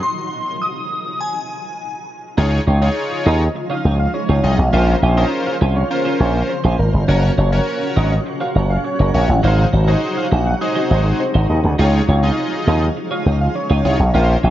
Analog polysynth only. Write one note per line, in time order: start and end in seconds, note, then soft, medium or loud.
2.38 2.61 D#4 medium
2.38 2.61 F4 medium
2.38 2.61 G#4 medium
2.38 2.61 C#5 loud
2.82 3.43 D#4 medium
2.82 3.44 F4 medium
2.82 3.44 G#4 medium
2.82 3.44 C#5 medium
4.43 4.57 D#4 medium
4.43 4.58 F4 medium
4.43 4.58 G#4 medium
4.43 4.58 D#5 medium
4.73 4.96 C#4 medium
4.73 4.96 F4 medium
4.73 4.96 A#4 medium
4.73 4.96 C5 medium
5.17 5.56 C#4 medium
5.17 5.56 F4 medium
5.17 5.56 A#4 medium
5.17 5.56 C5 medium
5.90 6.52 C#4 medium
5.90 6.52 F4 medium
5.90 6.52 A#4 medium
5.90 6.53 C5 medium
7.08 7.31 C#4 medium
7.08 7.31 F#4 medium
7.08 7.32 A#4 medium
7.08 7.32 C#5 loud
7.52 8.14 C#4 medium
7.52 8.14 F#4 medium
7.52 8.14 A#4 medium
7.52 8.14 C#5 medium
9.14 9.28 C#4 medium
9.14 9.28 F#4 medium
9.14 9.28 A#4 medium
9.14 9.29 C#5 medium
9.43 9.67 D#4 medium
9.43 9.67 F#4 medium
9.43 9.67 G#4 medium
9.43 9.67 C5 medium
9.88 10.26 D#4 medium
9.88 10.26 F#4 medium
9.88 10.26 G#4 medium
9.88 10.26 C5 medium
10.61 11.23 D#4 medium
10.61 11.23 F#4 medium
10.61 11.23 G#4 medium
10.61 11.23 C5 medium
11.79 12.02 D#4 medium
11.79 12.02 F4 medium
11.79 12.02 G#4 medium
11.79 12.02 C#5 loud
12.23 12.85 D#4 medium
12.23 12.85 F4 medium
12.23 12.85 G#4 medium
12.23 12.85 D#5 medium
13.85 13.99 D#4 medium
13.85 13.99 F4 medium
13.85 13.99 G#4 medium
13.85 13.99 C#5 medium
14.14 14.37 C#4 medium
14.14 14.37 F4 medium
14.14 14.38 A#4 medium
14.14 14.38 C5 medium